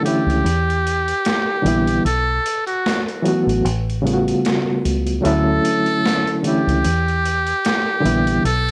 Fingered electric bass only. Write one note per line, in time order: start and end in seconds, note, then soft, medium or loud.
0.26 0.41 C#2 medium
0.44 1.12 E2 loud
1.65 1.98 A#1 medium
2.05 2.38 B1 medium
3.47 3.62 A1 medium
3.65 4.32 A1 loud
4.85 5.19 C#2 medium
5.25 5.58 D2 medium
6.67 6.82 C#2 medium
6.85 7.52 E2 loud
8.05 8.38 A#1 medium
8.44 8.71 B1 medium